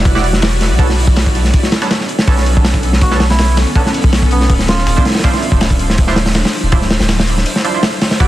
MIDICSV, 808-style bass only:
0, 0, Header, 1, 2, 480
1, 0, Start_track
1, 0, Tempo, 370370
1, 1030, Time_signature, 4, 2, 24, 8
1, 10727, End_track
2, 0, Start_track
2, 0, Title_t, "808-style bass"
2, 0, Program_c, 0, 38
2, 68, Note_on_c, 0, 28, 85
2, 915, Note_on_c, 0, 35, 77
2, 934, Note_off_c, 0, 28, 0
2, 1375, Note_off_c, 0, 35, 0
2, 1392, Note_on_c, 0, 35, 90
2, 1970, Note_off_c, 0, 35, 0
2, 2948, Note_on_c, 0, 35, 98
2, 4735, Note_off_c, 0, 35, 0
2, 5237, Note_on_c, 0, 35, 92
2, 5812, Note_off_c, 0, 35, 0
2, 5827, Note_on_c, 0, 26, 80
2, 6291, Note_off_c, 0, 26, 0
2, 6310, Note_on_c, 0, 26, 93
2, 6424, Note_off_c, 0, 26, 0
2, 7151, Note_on_c, 0, 26, 93
2, 7729, Note_off_c, 0, 26, 0
2, 7755, Note_on_c, 0, 26, 81
2, 8338, Note_off_c, 0, 26, 0
2, 8596, Note_on_c, 0, 26, 79
2, 9056, Note_off_c, 0, 26, 0
2, 9075, Note_on_c, 0, 26, 94
2, 9651, Note_off_c, 0, 26, 0
2, 10631, Note_on_c, 0, 28, 95
2, 10727, Note_off_c, 0, 28, 0
2, 10727, End_track
0, 0, End_of_file